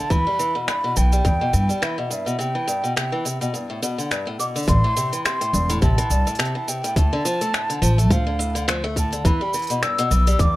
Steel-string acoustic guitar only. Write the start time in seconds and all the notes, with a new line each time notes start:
0.11 E3
0.27 G3
0.39 E3
0.55 B2
0.68 G2
0.84 B2
0.97 E3
1.13 G3
1.25 G2
1.41 B2
1.53 E3
1.69 G3
1.82 E3
1.98 B2
2.10 G2
2.26 B2
2.39 C3
2.55 E3
2.68 G2
2.84 B2
2.96 C3
3.12 E3
3.25 C3
3.41 B2
3.54 G2
3.70 A2
3.82 B2
3.98 D3
4.11 G2
4.27 A2
4.39 B2
4.56 D3
4.68 G2
4.84 A2
4.97 C3
5.13 E3
5.25 C3
5.41 A2
5.53 G2
5.70 A2
5.82 C3
5.98 E3
6.11 G2
6.27 A2
6.39 C3
6.55 E3
6.68 C3
6.84 A2
6.97 A2
7.13 D3
7.25 F3
7.41 A3
7.54 A2
7.70 D3
7.82 F3
7.98 A3
8.10 F3
8.27 D3
8.39 A2
8.55 D3
8.68 F3
8.84 A3
8.97 A2
9.13 D3
9.25 E3
9.41 G3
9.54 E3
9.70 B2
9.83 G2
9.99 B2
10.11 E3
10.27 G3
10.40 G2